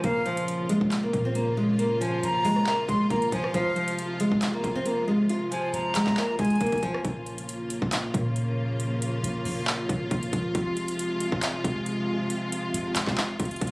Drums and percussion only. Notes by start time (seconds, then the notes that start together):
0.04 kick, closed hi-hat
0.26 closed hi-hat
0.37 closed hi-hat
0.48 closed hi-hat
0.69 closed hi-hat
0.81 kick
0.91 clap, closed hi-hat
1.13 kick, closed hi-hat
1.35 closed hi-hat
1.79 closed hi-hat
2.01 closed hi-hat
2.23 closed hi-hat
2.45 open hi-hat
2.56 cross-stick
2.66 clap
2.89 kick, closed hi-hat
3.10 kick, closed hi-hat
3.22 closed hi-hat
3.32 kick, closed hi-hat
3.44 cross-stick
3.54 kick, closed hi-hat
3.76 closed hi-hat
3.88 closed hi-hat
3.99 closed hi-hat
4.20 closed hi-hat
4.32 kick
4.42 clap, closed hi-hat
4.64 kick, closed hi-hat
4.86 closed hi-hat
5.29 closed hi-hat
5.52 closed hi-hat
5.74 closed hi-hat
5.95 clap, closed hi-hat
6.07 kick, clap
6.17 clap
6.39 kick, closed hi-hat
6.45 closed hi-hat
6.50 closed hi-hat
6.56 closed hi-hat
6.61 kick, closed hi-hat
6.66 closed hi-hat
6.72 kick, closed hi-hat
6.78 closed hi-hat
6.83 kick, closed hi-hat
6.94 cross-stick
7.05 kick, closed hi-hat
7.26 closed hi-hat
7.38 closed hi-hat
7.49 closed hi-hat
7.70 closed hi-hat
7.82 kick
7.92 clap, closed hi-hat
8.14 kick, closed hi-hat
8.36 closed hi-hat
8.80 closed hi-hat
9.02 closed hi-hat
9.24 closed hi-hat
9.45 open hi-hat
9.67 clap
9.89 kick, closed hi-hat
10.11 kick, closed hi-hat
10.23 closed hi-hat
10.33 kick, closed hi-hat
10.55 kick, closed hi-hat
10.77 closed hi-hat
10.88 closed hi-hat
10.99 closed hi-hat
11.20 closed hi-hat
11.32 kick
11.42 clap, closed hi-hat
11.64 kick, closed hi-hat
11.86 closed hi-hat
12.30 closed hi-hat
12.52 closed hi-hat
12.74 closed hi-hat
12.96 clap, closed hi-hat
13.07 kick, clap
13.18 clap
13.40 kick, closed hi-hat
13.45 closed hi-hat
13.51 closed hi-hat
13.56 closed hi-hat
13.61 kick, closed hi-hat
13.67 closed hi-hat